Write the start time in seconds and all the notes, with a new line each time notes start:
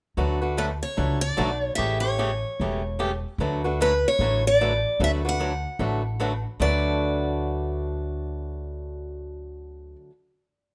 0.17 D2 D3 F#3 A3 D4 F#4 B4
0.41 A3 D4 F#4 B4
0.57 D3 F#3 A3 D4 F#4 B4
0.83 C#5
0.97 C#2 D3 F#3 A3 D4 F#4 B4
1.21 D5
1.37 B1 D3 F#3 A3 D4 F#4 B4
1.63 C#5
1.75 A1 C#3 E3 A3 C#4 G4 E5
2.00 A3 C#4 G4 C#5
2.18 C#3 E3 A3 C#4 G4
2.60 E1 C#3 E3 A3 C#4 G4
2.99 C#3 E3 A3 C#4 G4
3.38 D2 D3 F#3 A3 D4 F#4 B4
3.64 A3 D4 F#4 B4
3.80 D3 F#3 A3 D4 F#4 B4
4.08 C#5
4.19 A1 D3 F#3 A3 D4 F#4 B4
4.47 D5
4.61 D3 F#3 A3 D4 F#4 B4
5.00 D2 D3 F#3 A3 D4 F#4 B4
5.04 E5
5.25 A3 D4 F#4 B4
5.29 F#5
5.39 D3 F#3 A3 D4 F#4 B4
5.79 A1 D3 F#3 A3 D4 F#4 B4
6.20 D3 F#3 A3 D4 F#4 B4
6.60 D2 D3 F#3 A3 D4 F#4 B4 D5